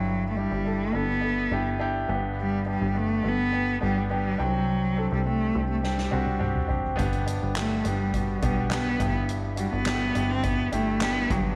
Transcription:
Already playing: G1 G2 F#3 D4 E4 G5
0.29 A3
0.35 G3 D4 E4 G4
0.51 G1
0.65 D4 E4 A4
0.93 G1 B3 D4 E4 A4
1.21 D4 E4 A4
1.51 G1 D4 E4 G4
1.79 D4 E4 G4
2.08 G1 G2 B3 D4 G4
2.41 G3
2.65 B3 D4 G4
2.69 G3
2.82 G1
2.94 A3 B3 D4 G4
3.23 G1 B3 D4 A4
3.28 B3
3.52 B3 D4 G4
3.81 G1 G3 B3 D4 G4
4.10 B3 D4 G4
4.14 G3
4.38 C2 C3 F#3 C4 D4 G5
4.96 C4 D4 A4
5.12 C2 G3
5.26 A3 C4 D4 G4
5.54 C2 C4 D4 G4
5.70 A3
5.83 G3 C4 D4 G4, snare
5.98 snare
6.11 C2 C4 D4 F#4, high tom
6.27 high tom
6.39 C4 D4 G4, mid tom
6.56 mid tom
6.68 C4 D4 G4, floor tom
6.84 floor tom
6.96 G1 G2 B3 D4 G4, kick, closed hi-hat
7.13 closed hi-hat
7.25 B3 D4 G4, closed hi-hat
7.43 G1
7.56 A3 B3 D4 G4, snare, clap, closed hi-hat
7.85 G1 G3 B3 D4 G4, closed hi-hat
8.13 B3 D4 F#4, kick, closed hi-hat
8.42 B1 G3 B3 D4 G4, kick, closed hi-hat
8.70 B3 D4 G4, snare, clap, closed hi-hat
8.75 B3
8.99 G1 G2 D4 E4 G4, kick, closed hi-hat
9.29 closed hi-hat
9.56 G3 D4 E4 F#4, closed hi-hat
9.73 G1 B3
9.86 D4 E4 G4, snare, clap, closed hi-hat
10.15 G1 D4 E4 G4, closed hi-hat
10.31 C4
10.43 B3 D4 E4 G4, kick, closed hi-hat
10.72 G1 A3 D4 E4 G4, closed hi-hat
11.01 B3 D4 E4 G4, snare, clap, closed hi-hat
11.30 G1 G2 F#3 B3 D4 G4, kick, closed hi-hat

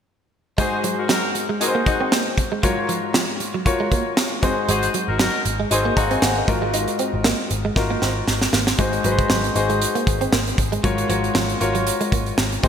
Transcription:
0.58 G#2 G#3 D#4 F#4 G#4 C5, kick, closed hi-hat
0.72 muted clean electric guitar stroke
0.84 F#3, closed hi-hat
0.98 D#4 F#4 A#4
1.09 F#3 D#4 F#4 A#4, snare, closed hi-hat
1.35 muted clean electric guitar stroke, closed hi-hat
1.49 G#3
1.60 C4 D#4 F#4 G#4 A#4, closed hi-hat
1.68 C5
1.75 A#3
1.86 C4 D#4 F#4, muted clean electric guitar stroke, kick, closed hi-hat
2.01 C4
2.12 A#3, snare, closed hi-hat
2.38 muted clean electric guitar stroke, kick, closed hi-hat
2.52 G#3
2.63 G#2 F#3 F4 F#4 A#4 C#5, kick, closed hi-hat
2.77 muted clean electric guitar stroke
2.89 F3, closed hi-hat
3.14 F3, snare, closed hi-hat
3.40 muted clean electric guitar stroke, closed hi-hat
3.54 F#3
3.65 F4 F#4 A#4 C#5, muted clean electric guitar stroke, kick, closed hi-hat
3.80 G#3
3.92 A#3, kick, closed hi-hat
4.17 snare, closed hi-hat
4.42 G#2 C4 D#4 F#4 G#4 C5, kick, closed hi-hat
4.69 G#1 G#3 F#4 G#4 C5, closed hi-hat
4.83 muted clean electric guitar stroke, closed hi-hat
4.94 F#3, closed hi-hat
5.08 G#1 D#4 F#4 A#4
5.19 F#3 D#4 F#4 A#4, snare, closed hi-hat
5.45 G#1, muted clean electric guitar stroke, closed hi-hat
5.60 G#3
5.71 G#1 C4 D#4 F#4 G#4 C5, closed hi-hat
5.85 A#3
5.97 G#1 C4 D#4 F#4 F5 A#5, muted clean electric guitar stroke, kick, closed hi-hat
6.11 C4 D#5 G#5, closed hi-hat
6.22 G#1 A#3 C5 F#5, snare, closed hi-hat
6.37 A#4 D#5
6.48 G#1 G#2 D#4 F4 F#4 A#4, muted clean electric guitar stroke, kick, closed hi-hat
6.62 G#3
6.74 D#4, closed hi-hat
6.88 muted clean electric guitar stroke, closed hi-hat
6.99 C4, closed hi-hat
7.14 G#1
7.24 A#3, snare, closed hi-hat
7.50 G#1, muted clean electric guitar stroke, closed hi-hat
7.65 G#3
7.76 G#1 D#4 F4 F#4 A#4, muted clean electric guitar stroke, kick, snare
7.91 A#3
8.02 G#1 C4, snare
8.28 G#1, snare
8.42 snare
8.53 G#1 A#3, snare
8.67 snare
8.78 G#1 G#2 G#3 D#4 F#4 G#4 C5, kick, closed hi-hat
8.93 muted clean electric guitar stroke, closed hi-hat
9.04 G#1 F#3 D#4 F#4 G#4 B4, closed hi-hat
9.12 C5
9.19 kick, closed hi-hat
9.30 G#1 F#3, snare
9.44 closed hi-hat
9.55 G#1 D#4 F#4 G#4 C5, muted clean electric guitar stroke, closed hi-hat
9.70 G#3, closed hi-hat
9.81 closed hi-hat
9.95 A#3, closed hi-hat
10.07 G#1, muted clean electric guitar stroke, kick, closed hi-hat
10.21 C4, closed hi-hat
10.33 G#1 A#3, snare
10.47 closed hi-hat
10.58 G#1, muted clean electric guitar stroke, kick, closed hi-hat
10.72 G#3, closed hi-hat
10.83 G#1 G#2 F#3 F4 F#4 A#4 C#5, kick, closed hi-hat
10.98 muted clean electric guitar stroke, closed hi-hat
11.09 G#1 F3 F4 F#4 A#4 C#5, closed hi-hat
11.24 closed hi-hat
11.35 G#1 F3, snare
11.49 closed hi-hat
11.60 G#1 F4 F#4 A#4 C#5, muted clean electric guitar stroke, closed hi-hat
11.75 F#3, closed hi-hat
11.86 muted clean electric guitar stroke, closed hi-hat
12.01 G#3, closed hi-hat
12.12 G#1 A#3, kick, closed hi-hat
12.26 closed hi-hat
12.38 G#1, snare
12.52 closed hi-hat
12.63 G#1 G#2 C4 D#4 F#4 G#4 C5, kick, closed hi-hat

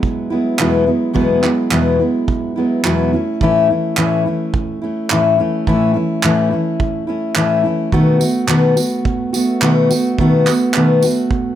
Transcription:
Already playing: F#3 G#3 B3 E4
0.03 kick
0.30 F#3 G#3 B3 E4
0.59 E2 B2 F#3 G#3 B3 E4, clap
0.86 F#3 G#3 B3 E4
1.13 E2 B2 F#3 G#3 B3 E4, kick
1.43 F#3 G#3 B3 E4, clap
1.71 E2 B2 F#3 G#3 B3 E4, clap
1.99 F#3 G#3 B3 E4
2.28 kick
2.56 F#3 G#3 B3 E4
2.84 E2 B2 F#3 G#3 B3 E4, clap
3.13 A3 C#4 E4
3.41 A2 E3 A3 C#4 E4, kick
3.70 A3 C#4 E4
3.97 A2 E3 A3 C#4 E4, clap
4.26 A3 C#4 E4
4.54 kick
4.82 A3 C#4 E4
5.10 A2 E3 A3 C#4 E4, clap
5.38 A3 C#4 E4
5.67 A2 E3 A3 C#4 E4, kick
5.94 A3 C#4 E4
6.23 A2 E3 A3 C#4 E4, clap
6.51 A3 C#4 E4
6.80 kick
7.07 A3 C#4 E4
7.35 A2 E3 A3 C#4 E4, clap
7.64 A3 C#4 E4
7.92 B2 D#3 A3 B3 F#4, kick
8.19 A3 B3 F#4, tambourine
8.47 B2 D#3 A3 B3 F#4, clap
8.76 A3 B3 F#4, tambourine
9.05 kick
9.33 A3 B3 F#4, tambourine
9.62 B2 D#3 A3 B3 F#4, clap
9.91 A3 B3 F#4, tambourine
10.19 B2 D#3 A3 B3 F#4, kick
10.47 B3 F#4, clap, tambourine
10.51 A3
10.74 B2 D#3 A3 B3 F#4, clap
11.02 A3 B3 F#4, tambourine
11.31 kick

